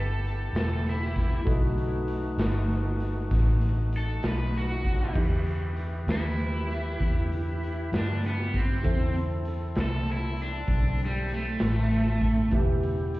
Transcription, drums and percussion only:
0.25 closed hi-hat medium
0.55 snare loud
0.55 closed hi-hat medium
0.86 closed hi-hat medium
1.16 kick medium
1.16 snare soft
1.16 closed hi-hat soft
1.47 kick medium
1.47 closed hi-hat medium
1.78 closed hi-hat medium
2.08 closed hi-hat medium
2.38 snare medium
2.38 closed hi-hat medium
2.70 closed hi-hat medium
3.00 closed hi-hat medium
3.31 kick medium
3.31 snare soft
3.31 closed hi-hat medium
3.61 closed hi-hat medium
3.93 closed hi-hat medium
4.23 snare loud
4.23 closed hi-hat medium
4.54 closed hi-hat medium
4.85 kick medium
4.85 closed hi-hat medium
5.15 kick medium
5.15 crash medium
5.47 closed hi-hat medium
5.77 closed hi-hat medium
6.08 snare medium
6.08 closed hi-hat medium
6.40 closed hi-hat soft
6.70 closed hi-hat medium
7.01 kick medium
7.01 closed hi-hat medium
7.32 closed hi-hat medium
7.63 closed hi-hat medium
7.93 snare loud
7.93 closed hi-hat medium
8.23 closed hi-hat medium
8.54 kick medium
8.54 closed hi-hat medium
8.84 kick medium
8.84 closed hi-hat medium
9.15 closed hi-hat medium
9.45 closed hi-hat medium
9.75 snare medium
9.75 closed hi-hat medium
10.06 closed hi-hat medium
10.36 closed hi-hat medium
10.67 kick medium
10.67 closed hi-hat medium
10.98 closed hi-hat medium
11.28 closed hi-hat medium
11.59 snare medium
11.59 closed hi-hat medium
11.90 closed hi-hat medium
12.21 kick medium
12.21 closed hi-hat medium
12.51 kick loud
12.51 closed hi-hat medium
12.83 closed hi-hat medium
13.14 closed hi-hat medium

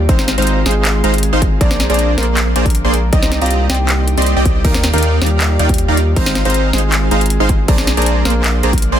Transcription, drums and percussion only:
0.09 kick loud
0.09 closed hi-hat medium
0.19 snare medium
0.28 snare medium
0.28 closed hi-hat medium
0.38 closed hi-hat medium
0.42 closed hi-hat medium
0.47 closed hi-hat medium
0.66 snare medium
0.66 closed hi-hat medium
0.71 closed hi-hat medium
0.85 clap loud
0.85 closed hi-hat medium
1.04 closed hi-hat medium
1.14 closed hi-hat medium
1.18 closed hi-hat medium
1.23 closed hi-hat medium
1.42 kick medium
1.42 closed hi-hat medium
1.61 kick loud
1.61 closed hi-hat medium
1.71 snare medium
1.80 snare medium
1.80 closed hi-hat medium
1.90 closed hi-hat soft
1.94 closed hi-hat medium
1.99 closed hi-hat medium
2.18 snare medium
2.18 closed hi-hat soft
2.23 closed hi-hat medium
2.37 clap loud
2.37 closed hi-hat medium
2.56 closed hi-hat medium
2.66 kick medium
2.66 closed hi-hat medium
2.70 closed hi-hat medium
2.75 closed hi-hat medium
2.94 closed hi-hat medium
3.13 kick loud
3.13 closed hi-hat medium
3.23 snare medium
3.32 snare medium
3.32 closed hi-hat medium
3.42 closed hi-hat soft
3.46 closed hi-hat medium
3.51 closed hi-hat medium
3.70 snare medium
3.70 closed hi-hat soft
3.75 closed hi-hat medium
3.89 clap loud
3.89 closed hi-hat medium
4.08 closed hi-hat medium
4.18 closed hi-hat soft
4.22 closed hi-hat medium
4.26 closed hi-hat medium
4.46 kick medium
4.46 closed hi-hat medium
4.65 kick loud
4.65 closed hi-hat medium
4.65 crash medium
4.74 snare medium
4.84 snare medium
4.84 closed hi-hat medium
4.94 closed hi-hat soft
4.98 closed hi-hat medium
5.03 closed hi-hat medium
5.22 snare medium
5.22 closed hi-hat soft
5.26 closed hi-hat medium
5.40 clap loud
5.40 closed hi-hat medium
5.59 closed hi-hat medium
5.69 kick medium
5.69 closed hi-hat soft
5.74 closed hi-hat medium
5.78 closed hi-hat medium
5.97 closed hi-hat medium
6.16 kick loud
6.16 closed hi-hat medium
6.16 crash soft
6.26 snare medium
6.35 snare medium
6.35 closed hi-hat medium
6.45 closed hi-hat soft
6.50 closed hi-hat medium
6.54 closed hi-hat medium
6.73 snare medium
6.73 closed hi-hat medium
6.78 closed hi-hat medium
6.92 clap loud
6.92 closed hi-hat medium
7.11 closed hi-hat medium
7.21 closed hi-hat soft
7.26 closed hi-hat medium
7.30 closed hi-hat medium
7.49 kick medium
7.49 closed hi-hat medium
7.68 kick loud
7.68 closed hi-hat medium
7.68 crash soft
7.78 snare medium
7.87 snare medium
7.87 closed hi-hat medium
7.97 closed hi-hat medium
8.02 closed hi-hat medium
8.06 closed hi-hat medium
8.25 snare medium
8.25 closed hi-hat medium
8.30 closed hi-hat medium
8.44 clap loud
8.44 closed hi-hat medium
8.63 closed hi-hat medium
8.73 kick medium
8.73 closed hi-hat medium
8.78 closed hi-hat medium
8.82 closed hi-hat medium

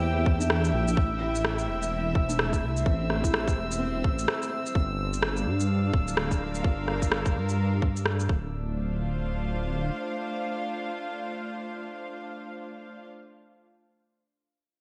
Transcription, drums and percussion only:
0.26 kick loud
0.41 shaker medium
0.50 cross-stick loud
0.65 shaker soft
0.88 shaker medium
0.97 kick loud
1.35 shaker medium
1.45 cross-stick loud
1.59 shaker soft
1.82 shaker medium
2.15 kick loud
2.30 shaker medium
2.39 cross-stick loud
2.53 kick medium
2.53 shaker soft
2.77 shaker medium
2.86 kick loud
3.10 cross-stick medium
3.24 kick medium
3.24 shaker medium
3.34 cross-stick loud
3.48 kick loud
3.48 shaker soft
3.72 shaker medium
4.04 kick loud
4.19 shaker medium
4.28 cross-stick loud
4.42 shaker soft
4.66 shaker medium
4.75 kick loud
5.13 shaker medium
5.23 cross-stick loud
5.37 shaker soft
5.60 shaker medium
5.93 kick loud
6.08 shaker medium
6.17 cross-stick loud
6.31 kick medium
6.31 shaker soft
6.55 shaker soft
6.64 kick loud
6.88 cross-stick medium
7.02 kick medium
7.02 shaker medium
7.12 cross-stick loud
7.26 kick loud
7.26 shaker soft
7.49 shaker medium
7.82 kick loud
7.97 shaker soft
8.06 cross-stick loud
8.20 shaker soft
8.29 kick loud

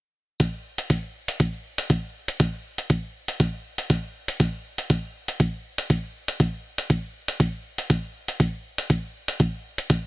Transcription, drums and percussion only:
0.40 kick loud
0.40 closed hi-hat soft
0.78 closed hi-hat medium
0.90 kick medium
0.90 closed hi-hat medium
1.28 closed hi-hat medium
1.40 kick loud
1.40 closed hi-hat soft
1.78 closed hi-hat medium
1.90 kick loud
1.90 closed hi-hat soft
2.28 closed hi-hat medium
2.40 kick loud
2.40 closed hi-hat soft
2.78 closed hi-hat medium
2.90 kick loud
2.90 closed hi-hat soft
3.28 closed hi-hat medium
3.40 kick loud
3.40 closed hi-hat soft
3.78 closed hi-hat medium
3.90 kick loud
3.90 closed hi-hat soft
4.28 closed hi-hat medium
4.40 kick loud
4.40 closed hi-hat soft
4.78 closed hi-hat medium
4.90 kick loud
4.90 closed hi-hat soft
5.28 closed hi-hat medium
5.40 kick loud
5.40 closed hi-hat soft
5.78 closed hi-hat medium
5.90 kick loud
5.90 closed hi-hat soft
6.28 closed hi-hat medium
6.40 kick loud
6.40 closed hi-hat soft
6.78 closed hi-hat medium
6.90 kick loud
6.90 closed hi-hat soft
7.28 closed hi-hat medium
7.40 kick loud
7.40 closed hi-hat soft
7.78 closed hi-hat medium
7.90 kick loud
7.90 closed hi-hat soft
8.28 closed hi-hat medium
8.40 kick loud
8.40 closed hi-hat soft
8.78 closed hi-hat medium
8.90 kick medium
8.90 closed hi-hat soft
9.28 closed hi-hat medium
9.40 kick loud
9.40 closed hi-hat soft
9.78 closed hi-hat medium
9.90 kick loud
9.90 closed hi-hat soft

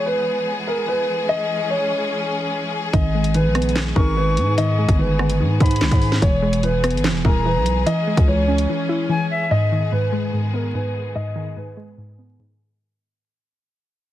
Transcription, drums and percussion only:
2.93 kick loud
2.93 closed hi-hat medium
3.24 closed hi-hat medium
3.34 closed hi-hat medium
3.55 cross-stick loud
3.55 closed hi-hat medium
3.62 closed hi-hat medium
3.69 closed hi-hat soft
3.76 snare loud
3.76 clap loud
3.76 closed hi-hat medium
3.96 kick loud
4.37 closed hi-hat medium
4.58 closed hi-hat medium
4.89 kick loud
4.89 closed hi-hat medium
5.19 cross-stick medium
5.30 closed hi-hat medium
5.60 kick loud
5.60 closed hi-hat soft
5.66 closed hi-hat medium
5.71 closed hi-hat medium
5.76 closed hi-hat medium
5.81 snare loud
5.81 clap medium
5.81 closed hi-hat medium
5.91 kick loud
5.91 closed hi-hat medium
6.02 open hi-hat medium
6.12 snare medium
6.22 kick loud
6.22 closed hi-hat medium
6.53 closed hi-hat medium
6.63 closed hi-hat medium
6.84 cross-stick loud
6.84 closed hi-hat medium
6.91 closed hi-hat medium
6.97 closed hi-hat soft
7.04 snare loud
7.04 clap medium
7.04 closed hi-hat medium
7.25 kick loud
7.66 closed hi-hat medium
7.87 closed hi-hat medium
8.17 kick loud
8.17 closed hi-hat medium
8.58 closed hi-hat medium

